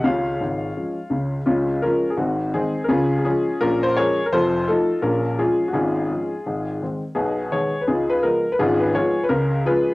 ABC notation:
X:1
M:4/4
L:1/16
Q:"Swing" 1/4=169
K:Db
V:1 name="Upright piano"
[Fdf]12- [Fdf]2 z2 | [A,DF]4 [DFB]3 A [CEG]4 [CEA]3 B | [DFA]3 A [DFA]4 [DFB]2 c2 [ABd]3 B | [F=Ac]4 [EFA]4 [DFB]4 [DF_A]3 G |
[DFA]12 z4 | [K:C#mix] [B,DG]4 [Gc]3 B [DEG]2 B2 A3 B | [CEG]2 B2 [EGc]3 B A4 [EGB]3 z |]
V:2 name="Upright piano" clef=bass
[D,,D,]4 [A,,,A,,]4 [F,A,D]4 [D,,D,]4 | [D,,D,]4 [F,A,]4 [A,,,A,,]4 [E,A,]4 | [D,,D,]4 [F,A,]4 [B,,,B,,]4 [F,A,D]4 | [F,,,F,,]4 [F,=A,]4 [B,,,B,,]4 [F,_A,]4 |
[A,,,A,,]4 [F,A,D]4 [A,,,A,,]4 [E,A,C]4 | [K:C#mix] [B,,,B,,]4 [D,G,B,]4 [C,,C,]4 [E,G,B,]4 | [G,,,G,,]4 [E,G,B,]4 [C,,C,]4 [E,G,C]4 |]